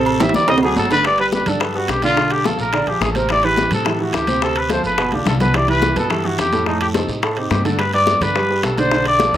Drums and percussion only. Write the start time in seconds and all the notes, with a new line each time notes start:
0.06 high conga, low agogo
0.20 cowbell, high conga, high timbale, short guiro
0.29 high timbale
0.34 high conga, short guiro
0.48 cowbell, high conga, high timbale, low agogo, long guiro
0.58 low timbale
0.62 high conga, low agogo
0.67 low timbale
0.76 cowbell, high conga, low timbale, short guiro
0.85 low timbale
0.90 cowbell, low agogo, short guiro
0.95 low timbale
1.04 high bongo, high conga, high timbale, long guiro
1.18 high conga, high timbale
1.32 high bongo, high conga, short guiro
1.46 high conga, low conga, high timbale, short guiro
1.60 high bongo, high timbale, long guiro
1.75 high conga
1.88 high bongo, low bongo, high conga, high timbale, low timbale, short guiro
2.02 high conga, high timbale, short guiro
2.17 high bongo, high conga, long guiro
2.31 high bongo, high conga, high timbale
2.44 high bongo, high conga, high timbale, short guiro
2.59 high bongo, high conga, short guiro
2.73 high bongo, high conga, high timbale, long guiro
2.87 high conga, high timbale
3.01 high bongo, low bongo, high conga, short guiro
3.15 high bongo, high conga, high timbale, short guiro
3.29 high bongo, high conga, high timbale, long guiro
3.43 high timbale
3.57 high bongo, high conga, short guiro
3.71 high conga, low conga, high timbale, short guiro
3.85 high bongo, high conga, high timbale, long guiro
4.00 high conga
4.13 high bongo, low bongo, high conga, high timbale, short guiro
4.27 high conga, high timbale, short guiro
4.42 high bongo, high conga, long guiro
4.56 high bongo, high timbale
4.70 high bongo, high conga, high timbale, short guiro
4.84 high bongo, high conga, short guiro
4.98 high bongo, high conga, high timbale, long guiro
5.12 high conga, high timbale
5.26 high bongo, low bongo, low conga, low timbale, short guiro
5.40 high bongo, low conga, high timbale, short guiro
5.54 high bongo, high conga, high timbale, long guiro
5.68 high conga, high timbale
5.82 high bongo, high conga, short guiro
5.96 high conga, low conga, high timbale, short guiro
6.10 high bongo, high conga, high timbale, long guiro
6.24 high conga
6.38 high bongo, low bongo, high conga, high timbale, low timbale, short guiro
6.52 high conga, high timbale, short guiro
6.66 high bongo, high conga, long guiro
6.81 high bongo, high conga, high timbale
6.94 high bongo, high conga, high timbale, short guiro
7.09 high bongo, high conga, short guiro
7.22 high bongo, high conga, high timbale, long guiro
7.37 high conga, high timbale
7.51 high bongo, low bongo, high conga, low timbale, short guiro
7.65 high bongo, high conga, high timbale, short guiro
7.79 high bongo, high conga, high timbale, long guiro
7.93 high conga, high timbale
8.07 high bongo, high conga, short guiro
8.21 high conga, low conga, high timbale, short guiro
8.35 high bongo, high conga, high timbale, long guiro
8.49 high conga
8.63 high bongo, low bongo, high conga, high timbale, low timbale, short guiro
8.78 high conga, high timbale, short guiro
8.91 high bongo, high conga, long guiro
9.05 high bongo, high conga, high timbale
9.20 high bongo, high conga, high timbale, short guiro
9.34 high bongo, high conga